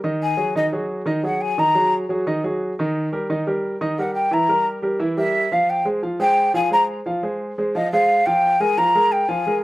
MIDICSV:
0, 0, Header, 1, 3, 480
1, 0, Start_track
1, 0, Tempo, 342075
1, 297, Time_signature, 4, 2, 24, 8
1, 13523, End_track
2, 0, Start_track
2, 0, Title_t, "Flute"
2, 0, Program_c, 0, 73
2, 311, Note_on_c, 0, 80, 89
2, 751, Note_off_c, 0, 80, 0
2, 789, Note_on_c, 0, 75, 82
2, 930, Note_off_c, 0, 75, 0
2, 1742, Note_on_c, 0, 78, 74
2, 1975, Note_on_c, 0, 80, 91
2, 1996, Note_off_c, 0, 78, 0
2, 2228, Note_on_c, 0, 82, 86
2, 2249, Note_off_c, 0, 80, 0
2, 2704, Note_off_c, 0, 82, 0
2, 5586, Note_on_c, 0, 78, 81
2, 5802, Note_off_c, 0, 78, 0
2, 5811, Note_on_c, 0, 79, 82
2, 6073, Note_on_c, 0, 82, 79
2, 6095, Note_off_c, 0, 79, 0
2, 6548, Note_off_c, 0, 82, 0
2, 7266, Note_on_c, 0, 76, 93
2, 7753, Note_on_c, 0, 77, 82
2, 7774, Note_off_c, 0, 76, 0
2, 7988, Note_on_c, 0, 79, 77
2, 8009, Note_off_c, 0, 77, 0
2, 8225, Note_off_c, 0, 79, 0
2, 8703, Note_on_c, 0, 79, 91
2, 9149, Note_off_c, 0, 79, 0
2, 9185, Note_on_c, 0, 80, 96
2, 9406, Note_off_c, 0, 80, 0
2, 9432, Note_on_c, 0, 82, 93
2, 9572, Note_off_c, 0, 82, 0
2, 10876, Note_on_c, 0, 75, 91
2, 11091, Note_off_c, 0, 75, 0
2, 11107, Note_on_c, 0, 77, 90
2, 11584, Note_on_c, 0, 79, 92
2, 11605, Note_off_c, 0, 77, 0
2, 12069, Note_on_c, 0, 80, 93
2, 12090, Note_off_c, 0, 79, 0
2, 12313, Note_on_c, 0, 82, 84
2, 12334, Note_off_c, 0, 80, 0
2, 12788, Note_on_c, 0, 79, 82
2, 12809, Note_off_c, 0, 82, 0
2, 13022, Note_on_c, 0, 80, 78
2, 13043, Note_off_c, 0, 79, 0
2, 13485, Note_off_c, 0, 80, 0
2, 13523, End_track
3, 0, Start_track
3, 0, Title_t, "Grand piano"
3, 0, Program_c, 1, 0
3, 52, Note_on_c, 1, 51, 87
3, 57, Note_on_c, 1, 63, 78
3, 58, Note_on_c, 1, 75, 83
3, 448, Note_off_c, 1, 51, 0
3, 451, Note_off_c, 1, 63, 0
3, 452, Note_off_c, 1, 75, 0
3, 521, Note_on_c, 1, 54, 76
3, 521, Note_on_c, 1, 66, 79
3, 527, Note_on_c, 1, 68, 82
3, 725, Note_off_c, 1, 54, 0
3, 725, Note_off_c, 1, 66, 0
3, 728, Note_off_c, 1, 68, 0
3, 776, Note_on_c, 1, 51, 69
3, 777, Note_on_c, 1, 63, 79
3, 783, Note_on_c, 1, 75, 85
3, 974, Note_off_c, 1, 51, 0
3, 974, Note_off_c, 1, 63, 0
3, 978, Note_off_c, 1, 75, 0
3, 1017, Note_on_c, 1, 66, 75
3, 1018, Note_on_c, 1, 54, 79
3, 1026, Note_on_c, 1, 68, 76
3, 1411, Note_off_c, 1, 66, 0
3, 1412, Note_off_c, 1, 54, 0
3, 1417, Note_off_c, 1, 68, 0
3, 1480, Note_on_c, 1, 51, 84
3, 1490, Note_on_c, 1, 63, 90
3, 1497, Note_on_c, 1, 75, 94
3, 1685, Note_off_c, 1, 51, 0
3, 1691, Note_off_c, 1, 63, 0
3, 1695, Note_off_c, 1, 75, 0
3, 1731, Note_on_c, 1, 54, 73
3, 1738, Note_on_c, 1, 66, 68
3, 1748, Note_on_c, 1, 68, 73
3, 2128, Note_off_c, 1, 54, 0
3, 2132, Note_off_c, 1, 66, 0
3, 2138, Note_off_c, 1, 68, 0
3, 2215, Note_on_c, 1, 51, 74
3, 2217, Note_on_c, 1, 63, 81
3, 2222, Note_on_c, 1, 75, 82
3, 2413, Note_off_c, 1, 51, 0
3, 2415, Note_off_c, 1, 63, 0
3, 2418, Note_off_c, 1, 75, 0
3, 2452, Note_on_c, 1, 54, 74
3, 2453, Note_on_c, 1, 66, 79
3, 2456, Note_on_c, 1, 68, 79
3, 2849, Note_off_c, 1, 54, 0
3, 2849, Note_off_c, 1, 66, 0
3, 2851, Note_off_c, 1, 68, 0
3, 2935, Note_on_c, 1, 54, 75
3, 2947, Note_on_c, 1, 66, 80
3, 2950, Note_on_c, 1, 68, 73
3, 3134, Note_off_c, 1, 54, 0
3, 3141, Note_off_c, 1, 66, 0
3, 3143, Note_off_c, 1, 68, 0
3, 3179, Note_on_c, 1, 51, 76
3, 3185, Note_on_c, 1, 63, 89
3, 3187, Note_on_c, 1, 75, 87
3, 3376, Note_off_c, 1, 51, 0
3, 3380, Note_off_c, 1, 63, 0
3, 3381, Note_off_c, 1, 75, 0
3, 3422, Note_on_c, 1, 54, 73
3, 3426, Note_on_c, 1, 66, 75
3, 3426, Note_on_c, 1, 68, 81
3, 3815, Note_off_c, 1, 54, 0
3, 3818, Note_off_c, 1, 66, 0
3, 3818, Note_off_c, 1, 68, 0
3, 3916, Note_on_c, 1, 63, 87
3, 3920, Note_on_c, 1, 51, 94
3, 3926, Note_on_c, 1, 75, 80
3, 4304, Note_off_c, 1, 63, 0
3, 4306, Note_off_c, 1, 51, 0
3, 4309, Note_off_c, 1, 75, 0
3, 4383, Note_on_c, 1, 55, 75
3, 4387, Note_on_c, 1, 67, 80
3, 4389, Note_on_c, 1, 70, 83
3, 4579, Note_off_c, 1, 55, 0
3, 4581, Note_off_c, 1, 67, 0
3, 4582, Note_off_c, 1, 70, 0
3, 4626, Note_on_c, 1, 51, 80
3, 4629, Note_on_c, 1, 63, 86
3, 4631, Note_on_c, 1, 75, 81
3, 4821, Note_off_c, 1, 51, 0
3, 4823, Note_off_c, 1, 63, 0
3, 4824, Note_off_c, 1, 75, 0
3, 4866, Note_on_c, 1, 55, 78
3, 4868, Note_on_c, 1, 67, 77
3, 4873, Note_on_c, 1, 70, 75
3, 5258, Note_off_c, 1, 55, 0
3, 5259, Note_off_c, 1, 67, 0
3, 5262, Note_off_c, 1, 70, 0
3, 5345, Note_on_c, 1, 51, 77
3, 5347, Note_on_c, 1, 63, 89
3, 5353, Note_on_c, 1, 75, 94
3, 5541, Note_off_c, 1, 51, 0
3, 5542, Note_off_c, 1, 63, 0
3, 5545, Note_off_c, 1, 75, 0
3, 5592, Note_on_c, 1, 55, 72
3, 5597, Note_on_c, 1, 67, 70
3, 5598, Note_on_c, 1, 70, 73
3, 5981, Note_off_c, 1, 55, 0
3, 5984, Note_off_c, 1, 67, 0
3, 5985, Note_off_c, 1, 70, 0
3, 6048, Note_on_c, 1, 52, 86
3, 6055, Note_on_c, 1, 64, 77
3, 6057, Note_on_c, 1, 76, 72
3, 6250, Note_off_c, 1, 52, 0
3, 6254, Note_off_c, 1, 64, 0
3, 6256, Note_off_c, 1, 76, 0
3, 6291, Note_on_c, 1, 55, 75
3, 6303, Note_on_c, 1, 67, 78
3, 6305, Note_on_c, 1, 70, 83
3, 6689, Note_off_c, 1, 55, 0
3, 6696, Note_off_c, 1, 67, 0
3, 6697, Note_off_c, 1, 70, 0
3, 6769, Note_on_c, 1, 67, 72
3, 6770, Note_on_c, 1, 55, 74
3, 6781, Note_on_c, 1, 70, 75
3, 6971, Note_off_c, 1, 67, 0
3, 6972, Note_off_c, 1, 55, 0
3, 6978, Note_off_c, 1, 70, 0
3, 7008, Note_on_c, 1, 52, 89
3, 7015, Note_on_c, 1, 64, 88
3, 7017, Note_on_c, 1, 76, 81
3, 7210, Note_off_c, 1, 52, 0
3, 7214, Note_off_c, 1, 64, 0
3, 7215, Note_off_c, 1, 76, 0
3, 7251, Note_on_c, 1, 55, 75
3, 7257, Note_on_c, 1, 67, 77
3, 7268, Note_on_c, 1, 70, 70
3, 7649, Note_off_c, 1, 55, 0
3, 7652, Note_off_c, 1, 67, 0
3, 7659, Note_off_c, 1, 70, 0
3, 7740, Note_on_c, 1, 53, 84
3, 7741, Note_on_c, 1, 65, 79
3, 7749, Note_on_c, 1, 77, 89
3, 8134, Note_off_c, 1, 53, 0
3, 8135, Note_off_c, 1, 65, 0
3, 8140, Note_off_c, 1, 77, 0
3, 8211, Note_on_c, 1, 56, 79
3, 8213, Note_on_c, 1, 68, 76
3, 8216, Note_on_c, 1, 72, 70
3, 8412, Note_off_c, 1, 56, 0
3, 8413, Note_off_c, 1, 68, 0
3, 8415, Note_off_c, 1, 72, 0
3, 8455, Note_on_c, 1, 53, 70
3, 8461, Note_on_c, 1, 65, 76
3, 8464, Note_on_c, 1, 77, 80
3, 8655, Note_off_c, 1, 53, 0
3, 8658, Note_off_c, 1, 65, 0
3, 8660, Note_off_c, 1, 77, 0
3, 8694, Note_on_c, 1, 56, 80
3, 8696, Note_on_c, 1, 68, 80
3, 8697, Note_on_c, 1, 72, 78
3, 9090, Note_off_c, 1, 56, 0
3, 9092, Note_off_c, 1, 68, 0
3, 9092, Note_off_c, 1, 72, 0
3, 9176, Note_on_c, 1, 53, 81
3, 9178, Note_on_c, 1, 65, 87
3, 9188, Note_on_c, 1, 77, 93
3, 9375, Note_off_c, 1, 53, 0
3, 9376, Note_off_c, 1, 65, 0
3, 9382, Note_off_c, 1, 77, 0
3, 9407, Note_on_c, 1, 56, 70
3, 9411, Note_on_c, 1, 68, 77
3, 9426, Note_on_c, 1, 72, 71
3, 9806, Note_off_c, 1, 56, 0
3, 9809, Note_off_c, 1, 68, 0
3, 9817, Note_off_c, 1, 72, 0
3, 9904, Note_on_c, 1, 53, 78
3, 9911, Note_on_c, 1, 65, 81
3, 9912, Note_on_c, 1, 77, 82
3, 10099, Note_off_c, 1, 53, 0
3, 10103, Note_off_c, 1, 65, 0
3, 10104, Note_off_c, 1, 77, 0
3, 10141, Note_on_c, 1, 56, 76
3, 10145, Note_on_c, 1, 68, 77
3, 10148, Note_on_c, 1, 72, 77
3, 10534, Note_off_c, 1, 56, 0
3, 10536, Note_off_c, 1, 68, 0
3, 10538, Note_off_c, 1, 72, 0
3, 10637, Note_on_c, 1, 56, 82
3, 10639, Note_on_c, 1, 68, 74
3, 10644, Note_on_c, 1, 72, 75
3, 10827, Note_off_c, 1, 56, 0
3, 10828, Note_off_c, 1, 68, 0
3, 10831, Note_off_c, 1, 72, 0
3, 10874, Note_on_c, 1, 53, 88
3, 10886, Note_on_c, 1, 65, 78
3, 10890, Note_on_c, 1, 77, 77
3, 11065, Note_off_c, 1, 53, 0
3, 11072, Note_off_c, 1, 65, 0
3, 11074, Note_off_c, 1, 77, 0
3, 11126, Note_on_c, 1, 56, 80
3, 11128, Note_on_c, 1, 68, 85
3, 11135, Note_on_c, 1, 72, 78
3, 11508, Note_off_c, 1, 56, 0
3, 11509, Note_off_c, 1, 68, 0
3, 11513, Note_off_c, 1, 72, 0
3, 11600, Note_on_c, 1, 53, 85
3, 11600, Note_on_c, 1, 65, 93
3, 11605, Note_on_c, 1, 77, 87
3, 11984, Note_off_c, 1, 53, 0
3, 11984, Note_off_c, 1, 65, 0
3, 11987, Note_off_c, 1, 77, 0
3, 12069, Note_on_c, 1, 56, 85
3, 12076, Note_on_c, 1, 70, 75
3, 12078, Note_on_c, 1, 68, 73
3, 12261, Note_off_c, 1, 56, 0
3, 12265, Note_off_c, 1, 70, 0
3, 12266, Note_off_c, 1, 68, 0
3, 12314, Note_on_c, 1, 53, 82
3, 12317, Note_on_c, 1, 65, 81
3, 12319, Note_on_c, 1, 77, 76
3, 12504, Note_off_c, 1, 53, 0
3, 12506, Note_off_c, 1, 65, 0
3, 12507, Note_off_c, 1, 77, 0
3, 12559, Note_on_c, 1, 56, 77
3, 12563, Note_on_c, 1, 68, 79
3, 12567, Note_on_c, 1, 70, 82
3, 12942, Note_off_c, 1, 56, 0
3, 12945, Note_off_c, 1, 68, 0
3, 12948, Note_off_c, 1, 70, 0
3, 13029, Note_on_c, 1, 65, 83
3, 13030, Note_on_c, 1, 53, 87
3, 13034, Note_on_c, 1, 77, 86
3, 13220, Note_off_c, 1, 53, 0
3, 13220, Note_off_c, 1, 65, 0
3, 13223, Note_off_c, 1, 77, 0
3, 13283, Note_on_c, 1, 56, 77
3, 13285, Note_on_c, 1, 68, 77
3, 13293, Note_on_c, 1, 70, 74
3, 13523, Note_off_c, 1, 56, 0
3, 13523, Note_off_c, 1, 68, 0
3, 13523, Note_off_c, 1, 70, 0
3, 13523, End_track
0, 0, End_of_file